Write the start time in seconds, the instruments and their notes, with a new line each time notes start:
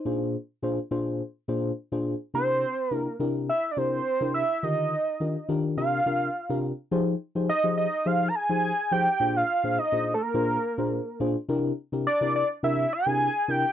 Already playing: fm electric piano D#4
0.05 fm electric piano A#2 D4 F4 G#4 C5
0.63 fm electric piano A#2 D4 F4 G#4 C5
0.91 fm electric piano A#2 D4 F4 G#4 C5
1.48 fm electric piano A#2 D4 F4 G#4 C5
1.92 fm electric piano A#2 D4 F4 G#4 C5
2.34 fm electric piano C3 D4 E4 G4 A#4, analog synth lead C5
2.91 fm electric piano C3 D4 E4 G4 A#4, analog synth lead A#4
3.19 fm electric piano C3 D4 E4 G4 A#4
3.49 analog synth lead E5
3.71 analog synth lead D5
3.77 fm electric piano C3 D4 E4 G4 A#4, analog synth lead C5
4.21 fm electric piano C3 D4 E4 G4 A#4
4.34 analog synth lead E5
4.63 fm electric piano D3 D#3 F4 G4 A#4, analog synth lead D#5
5.20 fm electric piano D#3 D4 F4 G4 A#4
5.49 fm electric piano D#3 D4 F4 G4 A#4
5.77 fm electric piano C3 D4 F4 G4 A#4, analog synth lead F5
6.06 fm electric piano C3 D4 F4 G4 A#4
6.50 fm electric piano C3 D4 F4 G4 A#4
6.92 fm electric piano F3 D#4 G4 G#4 C5
7.35 fm electric piano F3 D#4 G4 G#4 C5
7.49 analog synth lead D#5
7.64 fm electric piano F3 D#4 G4 G#4 C5
7.77 analog synth lead D#5
8.06 fm electric piano F3 D#4 G4 G#4 C5, analog synth lead F5
8.28 analog synth lead A#5
8.35 analog synth lead G#5
8.49 fm electric piano F3 D#4 G4 G#4 C5
8.91 fm electric piano F3 D#4 G4 G#4 C5, analog synth lead G5
9.20 fm electric piano A#2 D4 F4 G#4 C5
9.36 analog synth lead F5
9.64 fm electric piano A#2 D4 F4 G#4 C5
9.78 analog synth lead D#5
9.92 fm electric piano A#2 D4 F4 G#4 C5
10.14 analog synth lead A4
10.22 analog synth lead A#4
10.34 fm electric piano A#2 D4 F4 G#4 C5
10.78 fm electric piano A#2 D4 F4 G#4 C5
11.20 fm electric piano A#2 D4 F4 G#4 C5
11.49 fm electric piano C3 D4 E4 G4 A#4
11.92 fm electric piano C3 D4 E4 G4 A#4
12.07 analog synth lead D5
12.21 fm electric piano C3 D4 E4 G4 A#4
12.36 analog synth lead D5
12.63 fm electric piano C3 D4 E4 G4 A#4, analog synth lead E5
12.93 analog synth lead G#5
13.06 fm electric piano C3 D4 E4 G4 A#4
13.48 fm electric piano C3 D4 E4 G4 A#4, analog synth lead G5